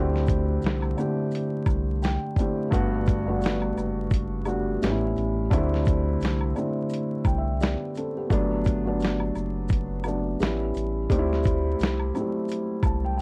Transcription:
Already playing: D2 D3 A3 C4 E4
0.00 G4
0.16 snare
0.27 kick, closed hi-hat, maracas, shaker
0.62 C2, closed hi-hat, maracas
0.66 snare
0.82 high woodblock
0.97 D3 A3 C4 E4 G4, high woodblock, maracas, shaker
1.31 closed hi-hat, maracas
1.66 C2, kick, high woodblock, maracas, shaker
2.02 G5, snare, closed hi-hat, maracas
2.36 D3 A3 C4 E4, kick, closed hi-hat, maracas, shaker
2.41 G4
2.71 G1 G2 A3 B3 D4 F#4, kick, closed hi-hat, maracas
3.06 kick, closed hi-hat, maracas, shaker
3.26 G2 A3 B3 D4 F#4
3.41 closed hi-hat, maracas
3.46 snare
3.62 high woodblock
3.77 F#1, high woodblock, maracas, shaker
4.11 kick, closed hi-hat, maracas
4.46 G3 A3 B3 D4 F#4, high woodblock, maracas, shaker
4.82 A1 A2 G3 B3 C#4 D#4, snare, closed hi-hat, maracas
4.92 E4
5.16 A1, closed hi-hat, maracas, shaker
5.50 D2 D3 F#3 A3 C4 E4, kick, closed hi-hat, maracas
5.57 G3
5.74 snare
5.85 kick, closed hi-hat, maracas, shaker
6.21 C2, closed hi-hat, maracas
6.25 snare
6.41 high woodblock
6.55 D3 G3 A3 C4 E4, high woodblock, maracas, shaker
6.89 maracas
6.93 closed hi-hat
7.25 C2 G5, kick, high woodblock, maracas, shaker
7.38 E5
7.61 B3 G4 D5, snare, closed hi-hat, maracas
7.95 C4 A4, closed hi-hat, maracas, shaker
8.17 B3 G4
8.30 G1 F#3 A3 B3 D4, kick, closed hi-hat, maracas
8.65 kick, closed hi-hat, maracas, shaker
8.85 F#3 A3 B3 D4
9.00 closed hi-hat, maracas
9.05 snare
9.20 high woodblock
9.36 F#1, high woodblock, maracas, shaker
9.69 kick, maracas
9.73 closed hi-hat
10.04 F#3 A3 B3 D4, high woodblock, maracas
10.08 shaker
10.40 A1 G3 B3 C#4 E4, snare, closed hi-hat, maracas
10.74 A1, closed hi-hat, maracas, shaker
11.10 D2 G3 A3 C4 D#4, kick, closed hi-hat, maracas
11.19 E4
11.33 snare
11.44 kick, closed hi-hat, maracas, shaker
11.79 C2, closed hi-hat, maracas
11.83 snare
12.00 high woodblock
12.14 F#3 A3 C4 E4, high woodblock, maracas, shaker
12.20 G3
12.48 closed hi-hat, maracas
12.83 C2 A5, kick, high woodblock, maracas, shaker
13.05 G5
13.18 G5

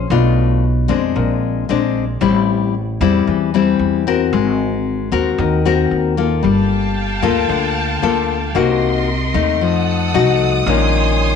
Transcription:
0.10 B1 B2 A3 D4 F4
0.88 F2 G#3 C4 D4
1.15 A#1 A#2
1.69 A#1 G#3 C4 D4
2.21 A1 A2 G3 C4 E4
3.01 E2 G3 C4 E4
3.27 E2 E3
3.54 G3 C4 E4
3.79 E2
4.07 C4 F#4 A#4
4.33 G#1 G#3
5.12 D#2 C4 F#4 A#4
5.38 D#2 D#3
5.65 C4 F#4 A#4
5.91 D#2
6.17 A#3 F4 A4
6.43 G1 G3 F5 G5 A5
7.22 D2 A#3 F4 A4
7.49 D2 D3
8.02 D2 A#3 F4 A4
8.55 C2 C3 A#3 D#4 F#4 A#4 D#5 C6
9.34 D#2 A3 D#4
9.61 F2 F3 A4 F#5 D#6
10.14 C2 A3 D#4 F#4
10.66 A#1 A#2 D#3 G#3 C#4 C#5 G#5 C6

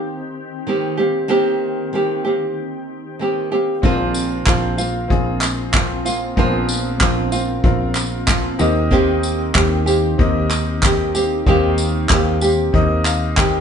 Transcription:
Already playing: D#3 A#3 C4 G4
0.67 D#3 A#3 C4 G4
0.97 A#3 C4 G4
1.28 D#3 A#3 C4 G4
1.93 D#3 A#3 C4 G4
2.25 A#3 C4 G4
3.19 D#3 A#3 C4 G4
3.52 A#3 C4 G4
3.82 A#1 A#2 F3 A#3 C4 F4 A#4, kick
4.14 tambourine
4.46 A#1 F3 A#3 C4 F4, kick, clap
4.78 A#3 C4 F4, tambourine
5.08 A#1 C4 F4 G#4, kick
5.41 clap, tambourine
5.72 F3 A#3 C4 F4, kick, clap
6.05 A#3 C4 F4, tambourine
6.36 A#1 A#2 F3 A#3 B3 C4 F4 A#4, kick
6.43 C4
6.69 tambourine
6.99 A#1 F3 A#3 C4 F4, kick, clap
7.32 A#3 C4 F4, tambourine
7.64 A#1 C4 F4 A#4, kick
7.95 clap, tambourine
8.27 F3 A#3 C4 F4, kick, clap
8.59 D#2 D#3 A#3 C4 D#4 G4 A#4 D#5, tambourine
8.91 D#3 A#3 C4 G4, kick
9.23 tambourine
9.54 D#2 D#3 A#3 C4 G4, kick, clap
9.86 A#3 C4 G4, tambourine
10.18 D#2 C4 D#4 G4 A#4 D#5, kick
10.50 clap, tambourine
10.82 D#3 A#3 C4 G4, kick, clap
11.14 A#3 C4 G4, tambourine
11.46 D#2 D#3 A#3 C4 D#4 G4 A#4 F5, kick
11.78 tambourine
12.09 D#2 D#3 A#3 C4, kick, clap
12.13 G4
12.41 A#3 C4 G4, tambourine
12.73 D#2 C4 D#4 G4 A#4 D#5, kick
13.05 F5, clap, tambourine
13.36 D#3 A#3 C4 G4 G5, kick, clap

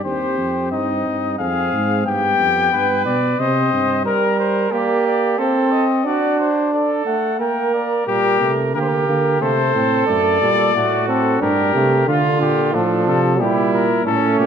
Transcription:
0.04 D#2 C4 G4 C5
0.38 F2
0.72 G2 D#4 D#5
1.06 G2
1.39 F2 C4 G#4 F5
1.73 G#2
2.06 G2 B3 G4 G5
2.40 F2
2.73 G2 B4
3.06 B2 D5
3.39 C3 C4 C5 D#5
3.72 G2
4.05 G3 A#4
4.40 C5
4.72 A#3 G4 D5
5.07 D5
5.38 C4 A4 C5
5.72 D#5
6.05 D4 F#4 D5
6.40 C5
6.73 A4 D5
7.05 A3 F#5
7.39 A#3 A#4 G5
7.74 D5
8.07 A#2 G3 G4 A#4
8.41 C3 A3
8.74 D3 A#3 G4 A#4
8.81 C5
8.89 A#4
9.08 D3 A#3
9.41 C3 A3 A4 C5
9.75 A2 C4
10.07 F#2 A3 D5
10.41 A#2 G3
10.75 A2 A3 F#4
11.08 C4 A4
11.41 G2 D4 G4 A#4
11.75 C3 A3
12.07 D3 F4
12.41 A#2 G4
12.74 A2 F3 D4 A4
13.07 C3 A4
13.40 A#2 G3 E4 G4
13.74 A#4
14.06 A2 A3 C#4 A4
14.39 A#2 G4

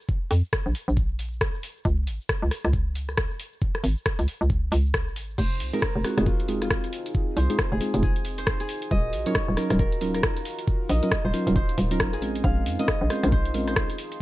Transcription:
0.01 shaker
0.08 kick, shaker
0.31 F2, open hi-hat, shaker
0.44 shaker
0.53 kick, cross-stick, shaker
0.66 A#1
0.75 open hi-hat, shaker
0.88 A#1, shaker
0.97 kick, shaker
1.19 open hi-hat, shaker
1.32 shaker
1.41 kick, cross-stick, shaker
1.54 shaker
1.63 open hi-hat, shaker
1.77 shaker
1.85 C#2, kick, shaker
2.07 G#1, open hi-hat, shaker
2.21 shaker
2.29 kick, cross-stick, shaker
2.42 C#2
2.51 cross-stick, open hi-hat, shaker
2.65 C#2, cross-stick, shaker
2.73 kick, shaker
2.95 open hi-hat, shaker
3.08 cross-stick, shaker
3.17 kick, cross-stick, shaker
3.30 shaker
3.40 open hi-hat, shaker
3.52 shaker
3.61 kick, shaker
3.75 cross-stick
3.84 G#1, open hi-hat, shaker
3.97 shaker
4.06 kick, cross-stick, shaker
4.19 C#2, open hi-hat, shaker
4.28 open hi-hat, shaker
4.41 C#2, shaker
4.50 kick, shaker
4.72 C#2, open hi-hat, shaker
4.86 shaker
4.94 kick, cross-stick, shaker
5.07 G#1, shaker
5.16 open hi-hat, shaker
5.30 shaker
5.38 F1 C4 D#4 F4 G#4 C5, kick, crash, shaker
5.60 C2, open hi-hat, shaker
5.73 G#3 C4 D#4 F4 G#4 A#4, closed hi-hat, shaker
5.82 kick, cross-stick, shaker
5.96 F1
6.04 G#3 C4 D#4 F4 F#4 G#4, cross-stick, open hi-hat, shaker
6.18 F1 G#3 C4 D#4 F4 G#4, cross-stick, closed hi-hat, shaker
6.26 F4, kick, shaker
6.40 closed hi-hat
6.48 G#3 C4 D#4 F4 G#4, open hi-hat, shaker
6.62 F4, cross-stick, closed hi-hat, shaker
6.70 kick, cross-stick, shaker
6.84 closed hi-hat, shaker
6.93 open hi-hat, shaker
7.06 closed hi-hat, shaker
7.14 kick, shaker
7.37 C2 C5, open hi-hat, shaker
7.50 G#3 C4 D#4 F4 G#4, closed hi-hat, shaker
7.59 kick, cross-stick, shaker
7.72 F1 G#4
7.81 G#3 C4 D#4 F4 G#4, open hi-hat, shaker
7.94 F1 G#3 C4 D#4 F4 G#4, closed hi-hat, shaker
8.03 G#4, kick, shaker
8.16 closed hi-hat
8.24 open hi-hat, shaker
8.38 C5, closed hi-hat, shaker
8.47 kick, cross-stick, shaker
8.60 G#4, closed hi-hat, shaker
8.68 D#4 F#4 A#4, open hi-hat, shaker
8.82 closed hi-hat, shaker
8.91 D#1 D#5, kick, shaker
9.13 A#1, open hi-hat, shaker
9.26 F#3 C#4 D#4 F4 A#4 C#5, closed hi-hat, shaker
9.35 kick, cross-stick, shaker
9.48 D#1
9.57 F#3 C#4 D#4 F4 A#4, cross-stick, open hi-hat, shaker
9.70 D#1 F#3 C#4 D#4 F4 A#4, cross-stick, closed hi-hat, shaker
9.79 A#4, kick, shaker
9.92 closed hi-hat
10.01 F#3 C#4 D#4 F4 A#4, open hi-hat, shaker
10.14 A#4, cross-stick, closed hi-hat, shaker
10.23 kick, cross-stick, shaker
10.37 closed hi-hat, shaker
10.45 open hi-hat, shaker
10.59 closed hi-hat, shaker
10.68 kick, shaker
10.89 A#1 D#5, open hi-hat, shaker
11.03 F#3 C#4 D#4 F4 A#4, closed hi-hat, shaker
11.12 kick, cross-stick, shaker
11.25 D#1 C5
11.34 F#3 C#4 D#4 F4 A#4, open hi-hat, shaker
11.47 D#1 F#3 C#4 D#4 F4 A#4, closed hi-hat, shaker
11.56 C5, kick, shaker
11.69 closed hi-hat
11.78 D#1, open hi-hat, shaker
11.90 F#3 C#4 D#4 F4 A#4, closed hi-hat, shaker
12.00 kick, cross-stick, shaker
12.13 A#1 G#4, closed hi-hat, shaker
12.22 G#3 C4 C#4 F4 A#4, open hi-hat, shaker
12.35 closed hi-hat, shaker
12.44 A#1 G#4 C5 F5, kick, shaker
12.66 F2, open hi-hat, shaker
12.79 G#3 C4 C#4 F4 A#4 D#5, closed hi-hat, shaker
12.88 kick, cross-stick, shaker
13.01 A#1
13.10 G#3 C4 C#4 F4 A#4 C5, cross-stick, open hi-hat, shaker
13.23 A#1 G#3 C4 C#4 F4 A#4, cross-stick, closed hi-hat, shaker
13.32 C5, kick, shaker
13.45 closed hi-hat
13.54 G#3 C4 C#4 F4 A#4, open hi-hat, shaker
13.68 C5, cross-stick, closed hi-hat, shaker
13.76 kick, cross-stick, shaker
13.90 closed hi-hat, shaker
13.98 open hi-hat, shaker
14.12 closed hi-hat, shaker

